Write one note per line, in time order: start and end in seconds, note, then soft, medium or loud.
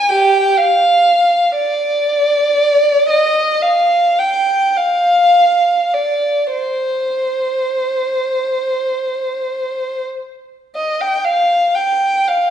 0.08 0.54 G4 medium
0.08 0.58 G5 medium
0.58 1.55 F5 medium
1.56 3.05 D5 medium
3.10 3.63 D#5 medium
3.62 4.18 F5 medium
4.18 4.75 G5 soft
4.77 5.92 F5 medium
5.93 6.54 D5 soft
6.54 10.01 C5 soft
10.75 10.99 D#5 soft
11.01 11.26 G5 soft
11.24 11.76 F5 medium
11.75 12.28 G5 soft
12.28 12.50 F5 medium